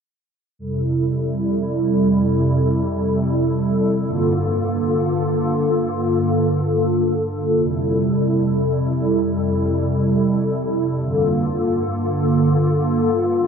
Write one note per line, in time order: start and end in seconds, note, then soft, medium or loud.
0.59 4.03 F2 medium
0.59 4.03 C3 medium
0.59 4.03 G3 medium
0.59 4.03 E4 medium
0.59 10.98 A4 medium
4.06 7.51 G2 medium
4.06 7.51 D3 medium
4.06 7.51 A#3 medium
4.06 7.51 F4 medium
7.54 10.99 F2 medium
7.54 10.99 C3 medium
7.54 10.99 G3 medium
7.54 10.99 E4 medium
11.02 13.47 G2 medium
11.02 13.47 D3 medium
11.02 13.47 A#3 medium
11.02 13.47 F4 medium
11.02 13.47 A4 medium